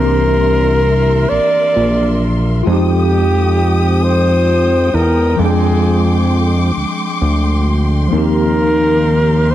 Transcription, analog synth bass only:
Already playing: C2
1.31 A#1
1.76 A#1
2.67 F2
4.94 E2
5.39 F2
6.77 D2
7.21 D2
8.12 D#2

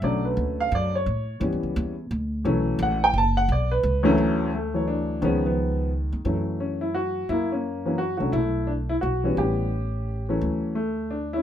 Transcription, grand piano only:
0.03 D3 F#3 A3 C#4 D5
0.25 B4
0.60 F5
0.75 D5
0.95 C#5
1.40 E3 G3 B3 C#4
2.45 E3 F#3 A3 C#4
2.83 F#5
3.04 G5
3.18 A5
3.37 F#5
3.52 D5
3.71 B4
4.03 D2 E3 F#3 A3 C#4
4.54 A3
4.74 E3 F#3 A3 C#5
4.88 D4
5.21 D#3 F3 G#3 B3 C#4
5.46 F3 B3
6.25 E3 F#3 A3 C#4
6.60 C#4
6.81 E4
6.95 F#4
7.29 A#3 E4
7.52 A#3 C#4
7.85 E3 F#3 A#3 C#4
7.98 F#4
8.17 D3 F#3 A3 C#4 F#4
8.32 A3 E4
8.67 D4
8.89 E4
9.01 F#4
9.23 E3 G3 B3 C#4
9.38 C#4 G4
10.29 E3 F#3 A3 C#4
10.75 A3
11.11 D4
11.33 C#4 E4

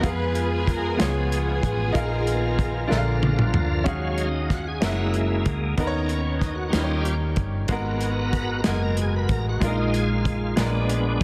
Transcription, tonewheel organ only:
0.06 F3 G#3 B3 G#4
1.95 D#3 F3 F4 A#4
2.91 D3 F3
3.85 F#3 G#3 C#4 F5
4.20 D#4
4.52 F#4
4.67 G#4
4.83 G#3 A#3 E4 F#4
5.17 E4
5.78 C#4 D#4 A#4
6.03 D#4
6.07 C#4
6.39 D#4
6.55 F#4
6.69 G3 C#4 D#4 F4
7.01 G4
7.68 B3 F#4 A#4
8.33 B4
8.49 A#4
8.66 G#4
8.83 A#4
9.02 G#4
9.16 B4
9.31 A#4
9.49 F#4
9.65 G#3 D#4 F4
9.81 D#4
9.97 G#4
10.12 F4
10.57 G#3 B3 D4

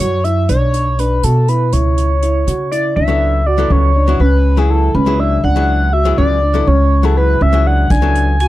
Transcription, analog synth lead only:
0.00 C#5
0.24 E5
0.49 C#5
0.99 B4
1.24 A4
1.49 B4
1.73 C#5
2.72 D5
2.96 E5
3.46 D5
3.72 C#5
4.20 B4
4.58 G#4
4.70 A4
4.95 B4
5.20 E5
5.44 F#5
5.93 E5
6.18 D5
6.67 C#5
7.05 A4
7.17 B4
7.42 E5
7.67 F#5
7.91 G#5
8.40 G#5

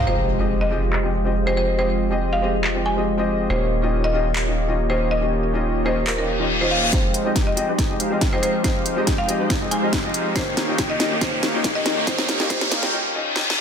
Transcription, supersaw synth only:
0.07 G#3 F4 G4 C5 D#5
3.50 A#3 F4 G4 C#5 D#5
6.93 G#3 D#4 G4 C5 F5
7.25 G#3 D#4 G4 C5 G5
7.68 G#3 D#4 G4 C5 D#5
8.00 G#3 D#4 G4 C5 F5
8.33 G#3 D#4 G4 C5 D#5
8.43 G#3 D#4 G4 C5 F5
8.64 G#3 D#4 G4 C5 F5
8.97 G#3 D#4 G4 C5 G5
9.40 G#3 D#4 G4 C5 D#5
9.71 G#3 D#4 G4 C5 F5
10.04 G#3 D#4 G4 C5 D#5
10.14 G#3 D#4 G4 C5 F5
10.36 A#3 D#4 G4 C#5 F5
10.69 A#3 D#4 G4 C#5 G5
11.11 A#3 D#4 G4 C#5 D#5
11.21 A#3 D#4 G4 C#5 F5
11.54 A#3 D#4 G4 C#5 G5
11.97 A#3 D#4 G4 C#5 D#5
12.07 A#3 D#4 G4 C#5 F5
12.40 A#3 D#4 G4 C#5 G5
12.50 A#3 D#4 G4 C#5 F5
12.83 A#3 D#4 G4 C#5 G5

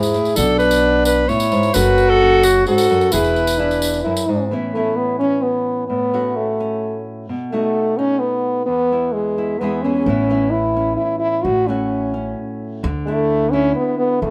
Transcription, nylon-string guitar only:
Already playing: G#2 E4 G#4
0.15 A2
0.38 B2 F#4
1.29 A2
1.52 G#2
1.74 F#2 A4
2.22 C#4
2.68 G#2
2.91 F#2
3.13 E2 G#4
3.60 E4
4.06 F#2
4.29 G#2
4.51 A2 E3 B3 C#4 E4
4.75 B3 C#4 E4
5.21 C#4
5.90 A2
6.14 A3 C#4 F#4
6.60 C#4
7.29 B2
7.52 A3 D#4 F#4
7.99 D#4
8.68 E2
8.92 B3 E4
9.38 E4
9.61 E2 G#3 B3 E4 G#4
9.84 B3 E4 G#4
10.06 A2 E3 B3 C#4 E4
10.30 B3 C#4 E4
10.76 C#4
11.46 A2
11.68 A3 C#4 F#4
12.14 C#4
12.83 D3
13.07 D4 E4
13.53 E4
14.23 E2

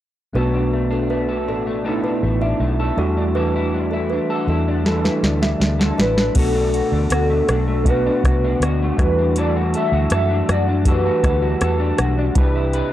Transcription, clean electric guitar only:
0.36 B2 A4
0.54 D4
0.73 A3
0.91 D4
1.10 A3
1.29 A4
1.48 D4
1.67 A3
1.85 B2 A4
2.04 D4
2.23 A3
2.42 D4
2.60 A3
2.80 A4
2.99 E3
3.17 D4
3.36 E3 A4
3.55 E4
3.74 D4
3.93 E4
4.13 D4
4.30 A4
4.49 E4
4.68 D4
4.87 E3 A4
5.04 E4
5.24 D4
5.42 E4
5.60 D4
5.79 A4
5.98 E4
6.17 D4
6.36 B2 F#4
6.55 D4
6.75 F#4
6.93 D4
7.11 F#4
7.30 A3
7.49 D4
7.68 A3
7.87 B2 F#4
8.06 D4
8.25 F#4
8.44 D4
8.63 F#4
8.82 A3
8.99 E3
9.19 D4
9.37 E3 A4
9.56 F#4
9.75 A4
9.93 F#4
10.11 A4
10.31 D4
10.50 F#4
10.69 D4
10.86 E3 A4
11.06 F#4
11.23 A4
11.42 F#4
11.62 A4
11.80 D4
11.99 F#4
12.19 D4
12.37 C3 B4
12.56 E4
12.74 B4

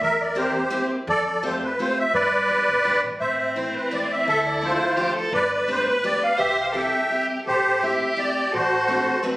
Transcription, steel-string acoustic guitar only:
0.35 A#3 C4 E4 G4
0.70 A#3 C4 E4 G4
1.43 A3 C4 F4 G4
1.79 A3 C4 F4 G4
2.49 G3 B3 D4 G4
2.84 G3 B3 D4 G4
3.56 E3 A3 C4 E4
3.91 E3 A3 C4 E4
4.62 F3 A3 D4 E4
4.97 F3 A3 D4 E4
5.67 A3 B3 D4 G4
6.03 A3 B3 D4 G4
6.74 G3 C4 E4 G4
7.10 G3 C4 E4 G4
7.83 A3 C4 E4 G4
8.16 A3 C4 E4 G4
8.88 A3 C4 D4 F#4
9.23 A3 C4 D4 F#4

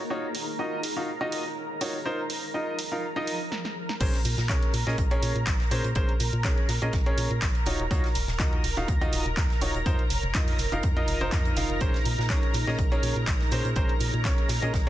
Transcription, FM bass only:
4.01 A#1
4.25 A#2
4.38 A#2
4.49 A#1
4.74 A#2
4.87 A#2
4.98 A#1
5.23 A#2
5.36 A#2
5.47 A#1
5.71 A#2
5.84 A#2
5.96 A#1
6.20 A#2
6.33 A#2
6.44 A#1
6.69 A#2
6.82 A#2
6.93 A#1
7.18 A#2
7.31 A#2
7.42 A#1
7.66 D#1
7.79 D#1
7.91 D#2
8.15 D#1
8.28 D#1
8.40 D#2
8.64 D#1
8.77 D#1
8.88 D#2
9.13 D#1
9.26 D#1
9.37 D#2
9.62 D#1
9.75 D#1
9.86 F2
10.10 F1
10.23 F1
10.35 F2
10.59 F1
10.72 F1
10.84 F2
11.08 F1
11.21 F1
11.32 F2
11.57 F1
11.70 F1
11.81 A#1
12.06 A#2
12.19 A#2
12.30 A#1
12.54 A#2
12.67 A#2
12.79 A#1
13.03 A#2
13.16 A#2
13.27 A#1
13.52 A#2
13.65 A#2
13.76 A#1
14.01 A#2
14.14 A#2
14.25 A#1
14.49 A#2
14.62 A#2
14.74 A#1

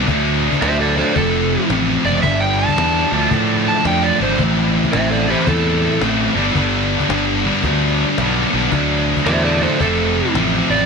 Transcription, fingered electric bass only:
0.08 D2
0.62 D2
1.16 F1
1.70 A1
2.04 F#1
2.23 G1
2.77 E2
3.12 D2
3.31 A2
3.85 F2
4.20 G#1
4.38 A1
4.93 A1
5.47 E2
6.01 A1
6.35 G1
6.55 G1
7.09 G1
7.63 D2
8.18 B1
8.53 B1
8.72 D2
9.26 E2
9.80 F1
10.34 A1
10.70 A1

